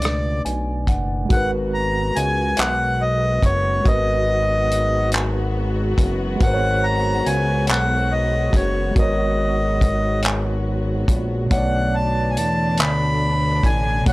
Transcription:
Already playing: C#2 B2 A3 D4 B4 D5
0.02 cross-stick, closed hi-hat
0.45 B1 G#5, closed hi-hat
0.87 F#1 F#5, kick, closed hi-hat
1.25 G#3 F#4
1.30 G#1 F#3 G#3 B3 F#4 A#4 F#5, kick, closed hi-hat
1.37 B4
1.74 A#5
2.16 C#2 G#5, closed hi-hat
2.57 B1 F#5, clap, closed hi-hat
3.02 D#5
3.42 F#1 C#5, kick, closed hi-hat
3.80 G#3
3.84 G#1 F#4 A#4 D#5, kick, closed hi-hat
3.92 B4
4.72 closed hi-hat
5.12 clap, closed hi-hat
5.98 F#1, kick, closed hi-hat
6.36 G#3 F#4
6.41 G#1 A#4 F#5, kick, closed hi-hat
6.47 C5
6.54 C#5
6.84 A#5
7.26 C#2 G#5, closed hi-hat
7.67 B1 F#5, clap, closed hi-hat
8.12 D#5
8.53 F#1 C#5, kick, closed hi-hat
8.91 G#3 F#4
8.96 G#1 A#4 D#5, kick, closed hi-hat
9.02 C#5
9.81 kick, closed hi-hat
10.23 clap, closed hi-hat
11.08 A#1, kick, closed hi-hat
11.46 B2
11.50 B1 D3 A3 B3 D4 C#5 F#5, kick, closed hi-hat
11.57 D5
11.95 A5
12.30 G#5
12.37 E2 A5, closed hi-hat
12.78 D2 B5, clap, closed hi-hat
13.63 A1 G#5, kick, closed hi-hat
14.01 B2
14.06 B1 A3 C#5 F#5, kick, closed hi-hat

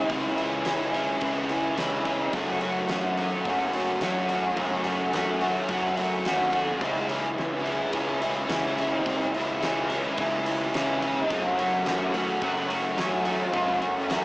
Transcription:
Already playing: E4
0.07 C#2 C#3 E3 G#3 C#4 E4, kick, open hi-hat
0.36 G#3 C#4 E4, open hi-hat
0.64 E3 G#3 C#4 E4, snare, open hi-hat
0.93 G#3 C#4 E4, open hi-hat
1.21 C#2 C#3 E3 G#3 C#4 E4, kick, open hi-hat
1.49 G#3 C#4 E4, open hi-hat
1.76 C#3 E3 G#3 C#4 E4, snare, open hi-hat
2.05 G#3 C#4 E4, kick, open hi-hat
2.32 F#2 C#3 F#3 A3 C#4 F#4, kick, open hi-hat
2.61 F#3 A3 C#4 F#4, open hi-hat
2.89 F#3 A3 C#4 F#4, snare, open hi-hat
3.18 F#3 A3 C#4 F#4, open hi-hat
3.45 F#2 C#3 F#3 A3 C#4 F#4, kick, open hi-hat
3.73 F#3 A3 C#4 F#4, open hi-hat
4.01 F#3 A3 C#4 F#4, snare, open hi-hat
4.28 F#3 A3 C#4 F#4, open hi-hat
4.54 F#2 C#3 F#3 A3 C#4 F#4, kick, open hi-hat
4.84 F#3 A3 C#4 F#4, open hi-hat
5.12 F#3 A3 C#4 F#4, snare, open hi-hat
5.40 F#3 A3 C#4 F#4, open hi-hat
5.68 F#2 C#3 F#3 A3 C#4 F#4, kick, open hi-hat
5.97 F#3 A3 C#4 F#4, open hi-hat
6.24 D#2 F#3 A3 C#4 F#4, snare, open hi-hat
6.52 F#3 A3 C#4 F#4, kick, open hi-hat
6.81 C#2 C#3 E3 G#3 C#4 E4, kick, open hi-hat
7.08 G#3 C#4 E4, open hi-hat
7.36 E3 G#3 C#4 E4, snare, open hi-hat
7.64 G#3 C#4 E4, open hi-hat
7.90 C#2 C#3 E3 G#3 C#4 E4, kick, open hi-hat
8.20 G#3 C#4 E4, open hi-hat
8.48 C#3 E3 G#3 C#4 E4, snare, open hi-hat
8.77 G#3 C#4 E4, open hi-hat
9.05 C#2 C#3 E3 G#3 C#4 E4, kick, open hi-hat
9.34 G#3 C#4 E4, open hi-hat
9.61 E3 G#3 C#4 E4, snare, open hi-hat
9.89 G#3 C#4 E4, open hi-hat
10.17 C#2 C#3 E3 G#3 C#4 E4, kick, open hi-hat
10.46 G#3 C#4 E4, open hi-hat
10.74 C#3 E3 G#3 C#4 E4, snare, open hi-hat
11.01 G#3 C#4 E4, kick, open hi-hat
11.29 F#2 C#3 F#3 A3 C#4 F#4, kick, open hi-hat
11.57 F#3 A3 C#4 F#4, open hi-hat
11.85 F#3 A3 C#4 F#4, snare, open hi-hat
12.12 F#3 A3 C#4 F#4, open hi-hat
12.41 F#2 C#3 F#3 A3 C#4 F#4, kick, open hi-hat
12.68 F#3 A3 C#4 F#4, open hi-hat
12.96 F#3 A3 C#4 F#4, snare, open hi-hat
13.25 F#3 A3 C#4 F#4, open hi-hat
13.52 F#2 C#3 F#3 A3 C#4 F#4, kick, open hi-hat
13.81 F#3 A3 C#4 F#4, open hi-hat
14.10 F#3 A3 C#4 F#4, snare, open hi-hat

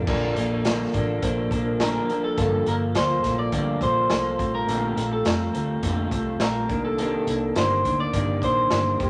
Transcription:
0.07 A#1 A#2 D3 F3 A#3 D4 A4 D5, kick, crash
0.35 A#1 F3 A#3 D4 A4, closed hi-hat
0.50 A#4
0.65 A#2 D3 F3 A#3 D4 A4, snare, closed hi-hat
0.94 A1 F3 A#3 D4 A4 D5, kick, closed hi-hat
1.22 A#1 F3 A#3 D4 A4 C5, kick, closed hi-hat
1.51 A#1 F3 A#3 D4 A4, kick, closed hi-hat
1.66 A#4
1.80 A#2 D3 F3 A#3 D4 A4 A#4, snare, closed hi-hat
2.08 F3 A#3 D4 A4 A#4, closed hi-hat
2.24 A4
2.37 G1 G2 D3 F3 A#3 F4 A4, kick, closed hi-hat
2.66 G1 F3 A#3 F4 A4 A#4, closed hi-hat
2.94 D2 F3 A#3 F4 A4 C5, snare, closed hi-hat
3.23 A#1 F3 A#3 F4 A4, kick, snare, closed hi-hat
3.39 D5
3.52 D2 G2 D3 F3 A#3 F4 A4, kick, closed hi-hat
3.81 A#1 F3 A#3 F4 A4 C5, kick, closed hi-hat
4.09 C2 F3 A#3 F4 A4, snare, closed hi-hat
4.38 A#1 A3 C4 F4 A4, kick, closed hi-hat
4.55 A#4
4.67 A#1 A#2 D3 A3 C4 F4 A4, closed hi-hat
4.96 A#1 A3 C4 F4 A4, closed hi-hat
5.13 A4
5.25 F2 A3 C4 F4 A4 A#4, snare, closed hi-hat
5.53 D2 A3 C4 F4 A4, closed hi-hat
5.83 F2 A#2 D3 A3 C4 F4 A4, kick, closed hi-hat
6.11 C2 A3 C4 F4 A4, kick, closed hi-hat
6.40 A#1 A3 C4 F4 A4 A#4, snare, closed hi-hat
6.69 C2 D#3 A#3 D4, kick, closed hi-hat
6.85 A4
6.98 C3 D#3 A#3 D4 A4, closed hi-hat
7.27 C2 D#3 A#3 D4, closed hi-hat
7.55 G1 C3 D#3 A#3 D4 C5, snare, closed hi-hat
7.84 D2 D#3 A#3 D4, kick, closed hi-hat
8.00 D5
8.13 G1 C3 D#3 A#3 D4, kick, closed hi-hat
8.42 A#1 D#3 A#3 D4 C5, kick, closed hi-hat
8.71 G1 C3 D#3 A#3 D4, snare, closed hi-hat
9.00 F1 D#3 A#3 C4 G4, kick, closed hi-hat

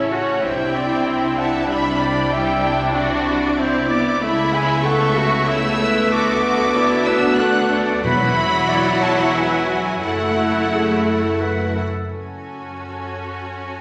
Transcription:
Already playing: A1 A2 C#3 C#4 E4 A4 C#5
0.10 F#4 F#5
0.42 C2 C3 C4 D4 E4 G4 C5 E5 G5
0.76 D5
1.06 G4 C5 E5
1.38 E5 F#5 A5
1.69 G3 D4 E5 B5
2.00 D5
2.31 G3 E4 E5 G5
2.62 D4
2.94 E4 F#4 D5
3.58 C4 E4 C5
3.89 B3 D5 D6
4.21 C#2 C#3 A3 B3 E4 E5 B5
4.53 G#3 G#5
4.83 A3 A4 F#5 C#6
5.15 F#4 E5
5.47 E4 C#5 E6
5.79 E4 B4
6.11 D2 D3 F#4 A4 D6
6.44 F#4
6.75 B3 E4 D5
7.06 D4 B4 E6
7.38 A3 D4 A4 F#5 F#6
7.72 D5
8.02 E1 E2 F#3 E4 F#4 B4 F#5 B5
8.36 E5
8.69 D5
9.01 C#5 A5
9.34 B4 G#5
10.03 F#1 F#2 A3 E4 F#4 A4 F#5
10.73 G#4
11.07 A4
11.41 B4
11.75 A4
12.08 F#1 F#2 C#4 F#4 A4 G#5

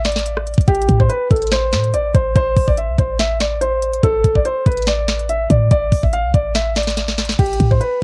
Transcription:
Already playing: A1
0.05 D5, finger snap, snare, closed hi-hat
0.12 closed hi-hat
0.16 snare, closed hi-hat
0.26 closed hi-hat
0.37 cross-stick
0.47 closed hi-hat
0.54 closed hi-hat
0.58 A1, kick, closed hi-hat
0.68 A1 G4, kick, closed hi-hat
0.75 closed hi-hat
0.82 closed hi-hat
0.89 A2, kick, closed hi-hat
1.00 C5, kick
1.09 B4, closed hi-hat
1.31 A1 A4, kick, closed hi-hat
1.36 closed hi-hat
1.42 closed hi-hat
1.47 closed hi-hat
1.52 C5, finger snap, snare, closed hi-hat
1.73 A2, finger snap, snare, closed hi-hat
1.84 closed hi-hat
1.94 A1 D5, closed hi-hat
2.15 A1 C5, kick, closed hi-hat
2.36 A1 C5, kick, closed hi-hat
2.56 A1, kick, open hi-hat
2.68 D5, kick
2.77 E5, closed hi-hat
2.89 C2
2.98 A1 C5, kick, closed hi-hat
3.19 E5, finger snap, snare, closed hi-hat
3.40 D5, finger snap, snare, closed hi-hat
3.61 C5, closed hi-hat
3.82 closed hi-hat
3.94 closed hi-hat
4.03 A1 A4, kick, closed hi-hat
4.24 A1, kick, closed hi-hat
4.35 D5, kick
4.45 C5, closed hi-hat
4.66 A1 B4, kick, closed hi-hat
4.72 closed hi-hat
4.77 closed hi-hat
4.82 closed hi-hat
4.87 D5, finger snap, snare, closed hi-hat
5.08 finger snap, snare, closed hi-hat
5.19 closed hi-hat
5.29 E5, closed hi-hat
5.50 A2 D5, kick, closed hi-hat
5.71 A1 D5, kick, closed hi-hat
5.92 A1, kick, open hi-hat
6.03 E5, kick
6.13 F5, closed hi-hat
6.24 C2
6.34 A1 D5, kick, closed hi-hat
6.55 E5, finger snap, snare, closed hi-hat
6.76 D5, finger snap, snare, closed hi-hat
6.83 closed hi-hat
6.87 snare, closed hi-hat
6.97 snare, closed hi-hat
7.08 snare
7.18 snare, closed hi-hat
7.25 closed hi-hat
7.29 snare, closed hi-hat
7.39 A1 G4, kick, closed hi-hat, crash
7.46 closed hi-hat
7.53 closed hi-hat
7.60 A2, kick, closed hi-hat
7.71 C5, kick
7.81 B4, closed hi-hat

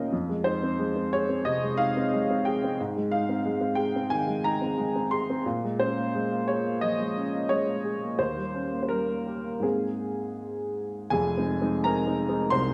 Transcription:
Already playing: A#2 A#3 C#4 D#4 A#4 D#5 F5
0.12 F2
0.29 G#3
0.44 D#4 C5
0.63 C4
0.79 G#3
0.96 C4
1.13 G#4 C#5
1.29 C4
1.45 C3 D#5
1.63 G#3
1.77 D#4 F5
1.97 C4
2.14 G#3
2.30 C4
2.45 G#4 G5
2.64 C4
2.81 G#2
2.96 G#3
3.11 D#4 F5
3.29 C4
3.46 G#3
3.61 C4
3.75 G#4 G5
3.96 C4
4.10 D#3 G#5
4.28 G#3
4.44 D#4 A#5
4.61 C4
4.78 G#3
4.95 C4
5.11 G#4 C6
5.30 C4
5.45 A#2
5.64 G#3
5.79 C#4 C5
5.97 A#3
6.15 G#3
6.32 A#3
6.48 G#4 C#5
6.66 A#3
6.81 F3 D#5
7.00 G#3
7.17 C#4
7.34 A#3
7.49 G#3 C#5
7.67 A#3
7.84 G#4
8.03 A#3
8.19 D#2 C5
8.36 G3
8.54 C#4
8.72 A#3
8.83 C5
8.89 G3 A#4
9.08 A#3
9.26 G4
9.44 A#3
9.60 G#2 G#3 A#3 C4 G#4
11.10 F1 F2 G#4 G#5
11.37 G#3 C4 D#4
11.61 G#3 C4 D#4
11.84 G#3 C4 D#4 A#4 A#5
12.06 G#3 C4 D#4
12.29 G#3 C4 D#4
12.50 C2 C5 C6

